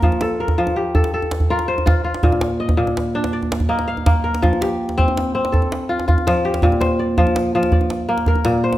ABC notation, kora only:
X:1
M:12/8
L:1/8
Q:3/8=109
K:Fmix
V:1 name="Kora"
B A B2 G2 A2 B c2 F- | F z e3 z d2 e f2 B- | B G3 z2 A3 F2 G- | G c d3 z d3 B2 c |]
V:2 name="Kora" clef=bass
F,2 z F,2 A2 z F2 F2 | B,,2 z B,,2 D2 z B,2 B,2 | F,2 z C2 C2 z F2 F,2 | B,,2 z F,2 F,2 z B,2 B,,2 |]